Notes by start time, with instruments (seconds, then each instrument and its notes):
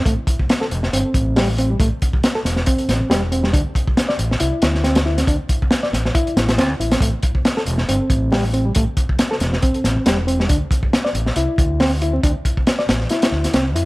0.06 fingered electric bass A1, reed electric piano A3, kick, closed hi-hat
0.27 kick, closed hi-hat
0.39 kick
0.49 snare, closed hi-hat
0.61 reed electric piano A4, snare
0.71 fingered electric bass E1, closed hi-hat
0.83 snare
0.93 fingered electric bass G1, reed electric piano C4, closed hi-hat
1.14 fingered electric bass A1, kick, closed hi-hat
1.36 reed electric piano G3, snare, open hi-hat
1.58 reed electric piano C4, closed hi-hat
1.70 reed electric piano G3
1.80 fingered electric bass A1, reed electric piano A3, kick, closed hi-hat
2.02 kick, closed hi-hat
2.13 kick
2.23 snare, closed hi-hat
2.35 reed electric piano A4, snare
2.45 fingered electric bass E1, snare, closed hi-hat
2.56 snare
2.66 reed electric piano C4, kick, closed hi-hat
2.78 closed hi-hat
2.89 fingered electric bass A1, snare, closed hi-hat
3.01 muted fingered electric bass stroke
3.10 fingered electric bass E1, reed electric piano G3, snare, closed hi-hat
3.32 reed electric piano C4, closed hi-hat
3.43 reed electric piano G3, snare
3.53 fingered electric bass D2, reed electric piano D4, kick, closed hi-hat
3.75 kick, closed hi-hat
3.88 kick
3.97 snare, closed hi-hat
4.09 reed electric piano D5, snare
4.19 fingered electric bass A1, closed hi-hat
4.31 snare
4.40 fingered electric bass C2, reed electric piano E4, closed hi-hat
4.62 fingered electric bass D2, snare, closed hi-hat
4.75 snare
4.84 reed electric piano C4, snare, closed hi-hat
4.95 snare, closed hi-hat
5.06 reed electric piano E4, snare
5.18 reed electric piano C4, snare, closed hi-hat
5.27 fingered electric bass D2, reed electric piano D4, kick, closed hi-hat
5.49 kick, closed hi-hat
5.62 kick
5.71 snare, closed hi-hat
5.83 reed electric piano D5, snare
5.93 fingered electric bass A1, snare, closed hi-hat
6.05 snare
6.15 reed electric piano E4, kick, closed hi-hat
6.27 closed hi-hat
6.36 fingered electric bass A1, snare, closed hi-hat
6.49 snare, closed hi-hat
6.58 fingered electric bass D2, reed electric piano C4, snare, closed hi-hat
6.80 fingered electric bass A1, reed electric piano E4, closed hi-hat
6.92 reed electric piano C4, snare, closed hi-hat
7.01 fingered electric bass A1, reed electric piano A3, kick, closed hi-hat
7.23 kick, closed hi-hat
7.35 kick
7.45 snare, closed hi-hat
7.57 reed electric piano A4, snare
7.66 fingered electric bass E1, closed hi-hat
7.78 snare
7.88 fingered electric bass G1, reed electric piano C4, closed hi-hat
8.10 fingered electric bass A1, kick, closed hi-hat
8.32 reed electric piano G3, snare, open hi-hat
8.54 reed electric piano C4, closed hi-hat
8.65 reed electric piano G3
8.75 fingered electric bass A1, reed electric piano A3, kick, closed hi-hat
8.97 kick, closed hi-hat
9.09 kick
9.19 snare, closed hi-hat
9.31 reed electric piano A4, snare
9.40 fingered electric bass E1, snare, closed hi-hat
9.53 snare
9.62 reed electric piano C4, kick, closed hi-hat
9.74 closed hi-hat
9.84 fingered electric bass A1, snare, closed hi-hat
9.96 muted fingered electric bass stroke
10.06 fingered electric bass E1, reed electric piano G3, snare, closed hi-hat
10.27 reed electric piano C4, closed hi-hat
10.39 reed electric piano G3, snare
10.49 fingered electric bass D2, reed electric piano D4, kick, closed hi-hat
10.71 kick, closed hi-hat
10.83 kick
10.93 snare, closed hi-hat
11.05 reed electric piano D5, snare
11.15 fingered electric bass A1, closed hi-hat
11.26 snare
11.36 fingered electric bass C2, reed electric piano E4, closed hi-hat
11.58 fingered electric bass D2, kick, closed hi-hat
11.80 reed electric piano C4, snare, open hi-hat
12.02 reed electric piano E4, closed hi-hat
12.14 reed electric piano C4
12.23 fingered electric bass D2, reed electric piano D4, kick, closed hi-hat
12.45 kick, closed hi-hat
12.57 kick
12.67 snare, closed hi-hat
12.79 reed electric piano D5, snare
12.89 fingered electric bass A1, snare, closed hi-hat
13.00 snare
13.09 reed electric piano E4, snare, closed hi-hat
13.22 snare, closed hi-hat
13.31 fingered electric bass D2, snare
13.44 muted fingered electric bass stroke, snare, closed hi-hat
13.54 fingered electric bass C2, reed electric piano C4, snare, closed hi-hat
13.75 fingered electric bass F2, reed electric piano E4, closed hi-hat